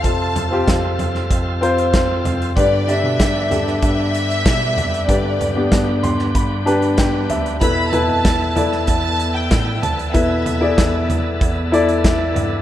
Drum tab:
HH |x-x-x-x-x-xxx-xx|x-x-x-x-x-xxx-xx|x-x-x-x-x-xxx-xx|x-x-x-x-x-x-x-xx|
SD |----o--o----o---|----o--o----o---|----o--o----o---|----o--o----o---|
FT |--o---o-------o-|------o-------o-|--o---o-------o-|--o---o-------o-|
BD |o---o---o---o---|o---o---o---o---|o---o---o---o---|o---o---o---o---|

HH |x-x-x-x-x-xxx-x-|
SD |----o-------o---|
FT |--o---o-------o-|
BD |o---o---o---o---|